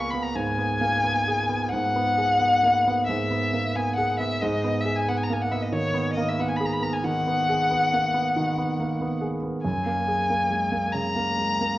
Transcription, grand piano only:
Already playing: C#2 A#3 B3 G#4
0.13 B3
0.35 G#2
0.58 B3
0.81 A#3
1.04 B3
1.28 G#4
1.49 B3
1.73 G#2
1.96 B3
2.18 G#4
2.41 B3
2.63 A#3
2.87 B3
3.09 G#2
3.31 B3
3.53 A#3
3.75 B3
3.98 G#4
4.20 B3
4.42 G#2
4.64 B3
4.85 G#4
5.08 B3
5.30 A#3
5.51 B3
5.72 D#3
5.94 B3
6.17 A#3
6.39 B3
6.61 G#4
6.82 B3
7.04 D#3
7.27 B3
7.49 G#4
7.71 B3
7.94 A#3
8.14 B3
8.37 D#3
8.58 B3
8.80 A#3
9.01 B3
9.21 G#4
9.43 B3
9.65 F#2
9.86 A#3
10.08 G#4
10.30 A#3
10.51 G#3
10.72 A#3
10.94 C#3
11.16 A#3
11.38 G#3
11.61 A#3

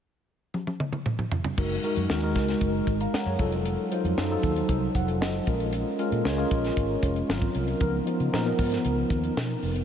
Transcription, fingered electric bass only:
1.58 F#1
1.97 F#2
2.10 D#2
2.36 C#2
2.61 F#1
2.87 G#1
3.13 muted fingered electric bass stroke
3.26 F#2
3.40 F1
4.04 F2
4.17 F#2
4.43 D#2
4.69 C2
4.95 F1
5.21 F#1
5.47 A#1
6.12 A#2
6.25 C#2
6.51 A#1
6.77 G#1
7.03 F1
7.29 G#1
7.55 C2
7.81 C#2
8.20 C#3
8.33 A#2
8.59 G#2
8.85 C#2
9.10 D#2
9.37 B2
9.63 F1

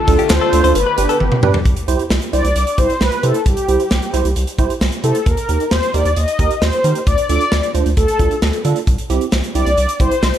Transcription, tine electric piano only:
0.08 D4 F4 A4
0.53 D4 F4 A4
0.64 D4 F4 A4
0.98 D4 G4 B4
1.43 D4 G4 B4
1.88 E4 G4 C5
2.33 E4 G4 C5
2.78 E4 G4 C5
3.23 E4 G4 C5
3.68 E4 G4 C5
4.14 E4 G4 C5
4.59 E4 G4 C5
5.04 E4 G4 C5
5.49 D#4 G4 A#4
5.94 D#4 G4 A#4
6.39 D#4 G4 A#4
6.84 D#4 G4 A#4
7.29 D4 F4 A4
7.74 D4 F4 C5
8.20 D4 F4 A4
8.65 D4 F4 A4
9.10 C4 E4 G4
9.55 C4 E4 G4
10.00 C4 E4 G4

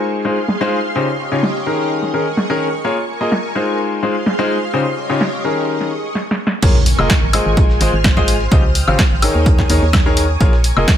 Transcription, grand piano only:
Already playing: G#3 D#4 F4 G#4 C5
0.25 G#3 D#4 F4 G#4 C5
0.61 G#3 D#4 F4 G#4 C5
0.96 C#3 C#4 D#4 F4 G4 C5
1.32 C#3 C#4 D#4 F4 G4 C#5
1.66 D#3 C#4 D#4 G#4 A#4
2.14 D#3 C#4 D#4 G#4 A#4
2.50 D#3 C#4 D#4 G#4 A#4
2.85 A#3 F4 G#4 A#4 C#5
3.21 A#3 F4 G#4 A#4 D#5
3.55 G#3 D#4 F4 G#4 C5
4.03 G#3 D#4 F4 G#4 C5
4.39 G#3 D#4 F4 G#4 C5
4.74 C#3 C#4 D#4 F4 G4 C5
5.10 C#3 C#4 D#4 F4 G4 C#5
5.44 D#3 C#4 D#4 G#4 A#4
6.63 A#3 F4 G#4 A#4 C#5
6.99 A#3 F4 G#4 A#4 D#5
7.34 G#3 F4 G#4 C5 D#5
7.81 G#3 F4 G#4 C5 D#5
8.17 G#3 F4 G#4 C5 D#5
8.52 C#3 F4 G4 C5 D#5
8.88 C#3 F4 G4 C5 F5
9.23 D#3 D#4 G#4 A#4 C#5
9.70 D#3 D#4 G#4 A#4 C#5
10.06 D#3 D#4 G#4 A#4 C#5
10.41 A#3 F4 G#4 A#4 C#5
10.77 A#3 F4 G#4 A#4 D#5

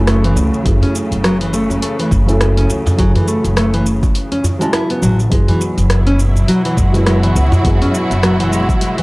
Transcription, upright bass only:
Already playing: F#1
0.36 C#2
0.66 F#1
1.11 F#1
2.11 F#1
2.69 C#2
2.99 F#1
3.44 F#1
5.02 A1
5.32 F#1
5.77 F#1
6.77 F#1
7.35 C#2
7.65 F#1
8.10 F#1

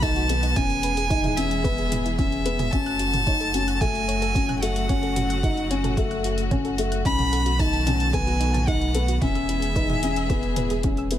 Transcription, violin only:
0.02 A5
0.56 G#5
1.37 E5
2.17 E5
2.71 A5
3.81 G#5
4.62 F#5
7.05 B5
7.60 A5
8.14 G#5
8.68 F#5
9.23 E5

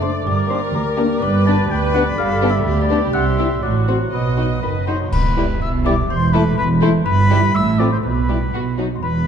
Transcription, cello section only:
Already playing: F#2
0.27 G2
0.75 D2
1.22 G2
1.70 D2
2.18 G2
2.66 D2
3.14 C3
3.63 A2
4.13 B2
4.63 F#2
5.13 E2
5.62 B2
6.10 E2
6.58 E2
7.07 G2
7.55 A2
8.04 B2
8.54 B2
9.03 E2

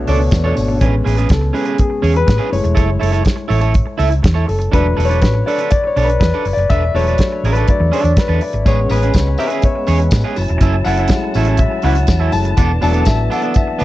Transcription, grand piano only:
Already playing: B2 B3 D4 A4 C#5 D5
0.08 B2 B3 D4 A4 C#5
0.44 B2 B3 D4 A4 C#5
0.81 G#3 B3 C#4
1.33 A4
1.54 G#3 B3 C#4
1.80 G#4
2.16 B4
2.52 G#3 A3 E4 C#5
4.48 A4
4.73 F#3 A3 D4 B4
5.05 C#5
5.21 B4
5.46 D5
5.71 D5
5.87 C#5
6.04 B4
6.20 B4
6.53 D5
6.70 E5
6.94 F#3 A3 D4 C#5
7.52 B4
7.69 F#3 A3 D4 D5
7.94 C#5
8.19 B4
8.42 D5
8.65 G#3 B3 C#4 C#5
8.91 B4
9.39 E5
9.65 C#5
10.84 F#5
11.09 G#3 A3 E4
11.59 E5
11.84 F#5
12.32 G#3 A3 E4 A5
12.81 F#3 A3 D4 A5
13.07 E5
13.32 F#5
13.57 E5

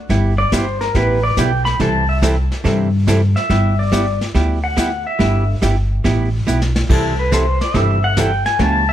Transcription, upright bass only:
0.09 G1
0.52 G1
0.95 A1
1.37 B1
1.80 C2
2.65 G2
3.50 G1
4.35 D2
5.20 G1
5.62 G1
6.05 A1
6.47 B1
6.90 C2
7.74 G1
8.59 C#2

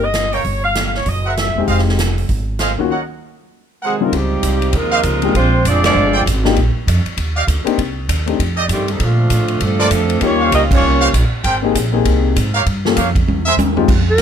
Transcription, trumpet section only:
0.33 A#4 C#5 F5 G5
1.25 A#4 C5 E5 F#5
1.68 G#4 C5 D#5 F5
2.60 G#4 C5 D#5 F5
2.91 A#4 C#5 D#5 F#5
3.83 G#4 A#4 C5 F#5
4.92 G4 C5 D#5 F5
6.13 G#4 C5 D5 G5
7.36 G4 D5 D#5 F5
8.57 G4 A4 D5 D#5
9.80 A4 A#4 C5 D5
10.40 G4 C5 C#5 F5
11.01 G4 C5 C#5 F5
11.44 G#4 A#4 C5 G5
12.54 G4 A#4 C#5 F5
12.96 G4 A#4 C#5 F5
13.46 G#4 A#4 C5 E5

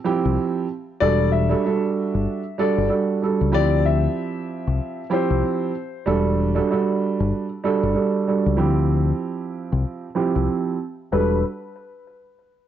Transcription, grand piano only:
0.04 F3 C4 E4 G4
1.00 G3 D4 F#4 A4
1.49 G3 D4 F#4 A4
1.65 G3 D4 F#4 A4
2.58 G3 D4 F#4 A4
2.89 G3 D4 F#4 A4
3.22 G3 D4 F#4 A4
3.52 F3 C4 E4 G4
5.10 F3 C4 E4 G4
6.06 G3 D4 F#4 A4
6.55 G3 D4 F#4 A4
6.70 G3 D4 F#4 A4
7.64 G3 D4 F#4 A4
7.94 G3 D4 F#4 A4
8.27 G3 D4 F#4 A4
8.57 F3 C4 E4 G4
10.15 F3 C4 E4 G4
11.12 G3 D4 F#4 A4

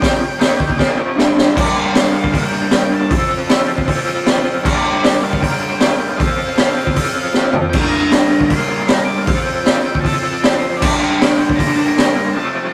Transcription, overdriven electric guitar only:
0.00 F2 C3 F3
0.20 muted overdriven electric guitar stroke
0.39 D#3 A#3 D#4
0.78 A#2 F3 A#3
0.96 F2 C3 F3
1.16 G2 D3 G3
1.55 G2 D3 G3 A#3 D4
1.59 A#4
2.33 G2 D3 G3 A#3 D4 A#4
3.10 F3 C4 F4
3.14 A4
3.87 F3 C4 F4
3.91 A4
4.63 G2 D3 G3 A#3 D4
4.67 A#4
5.40 G2 D3 G3 A#3 D4 A#4
6.17 F3 C4 F4
6.22 A4
6.96 F3 C4 F4
7.01 A4
7.74 G2 D3 G3 A#3 D4
7.79 A#4
8.51 G2 D3 G3 A#3 D4 A#4
9.27 F3 C4 F4 A4
10.02 F3 C4 F4 A4
10.80 G2 D3 G3 A#3 D4
10.84 G4
11.57 G2 D3 G3 A#3 D4 G4
12.35 F2 C3 F3 A3 C4 F4

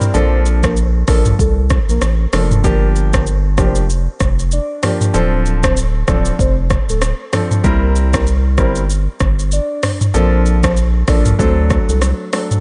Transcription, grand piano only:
Already playing: G3 C4 E4 A#4
0.14 F3 A#3 D4 A4
1.08 F3 A#3 D4 A4
2.33 F3 A#3 D4 A4
2.64 F3 A#3 D4 G4
3.58 F3 A#3 D4 G4
4.83 F3 A#3 D4 G4
5.14 F3 C4 D4 A4
6.08 F3 C4 D4 A4
7.33 F3 C4 D4 A4
7.64 G3 C4 E4 A#4
8.58 G3 C4 E4 A#4
10.14 F3 A#3 D4 A4
11.08 F3 A#3 D4 A4
11.39 F#3 A3 D4 A4
12.33 F#3 A3 D4 A4

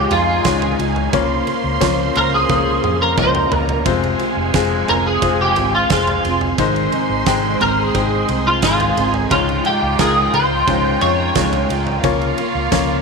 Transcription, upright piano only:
Already playing: G#2 G#3 D#4 F4 C#5
0.45 G#3 D#4 F4 C#5
1.13 C#3 A#3 C#4 F4 C#5
1.80 A#3 C#4 F4 C#5
2.49 A#3 C#4 F4 C5
2.56 C#5
3.18 A#3 C#4 F4 D#5
3.86 C3 G#3 C4 F4 C5
4.55 G#3 C4 F4 G#4
5.22 G#3 C4 F4 C5
5.91 G#3 C4 F4 G#4
6.59 G#2 D#3 G#3 C4 D#4 C5
7.27 G#3 C4 D#4 G5
7.95 G#3 C4 D#4 G5
8.63 G#3 C4 D#4 C5
9.32 G#2 G#3 D#4 F4 C#5
9.99 G#3 D#4 F4 A#4
10.68 G#3 C#4 D#4 F4
11.36 G#3 D#4 F4 C#5
12.04 C#3 A#3 C#4 F4 C#5
12.72 A#3 C#4 F4 C#5

